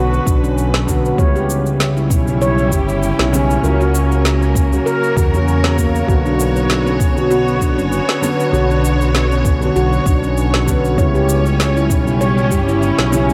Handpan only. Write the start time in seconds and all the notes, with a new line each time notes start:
Already playing: F#4
0.27 D4
0.44 C#4
0.88 B3
1.19 C#5
1.36 G4
1.97 E4
2.10 C#4
2.42 C#5
2.72 G4
2.89 E4
3.33 C#4
3.64 A#4
3.81 F#4
4.41 C#4
4.55 A#3
4.86 A#4
5.17 F#4
5.33 C#4
5.78 A#3
6.09 F#4
6.26 D4
6.87 C#4
7.00 B3
7.30 F#4
7.61 D4
7.78 C#4
8.22 B3
8.53 F#4
8.70 D4
9.31 C#4
9.45 B3
9.76 F#4
10.06 D4
10.23 C#4
10.68 B3
10.98 C#5
11.15 G4
11.76 E4
11.90 C#4
12.21 C#5
12.51 G4
12.68 E4
13.12 C#4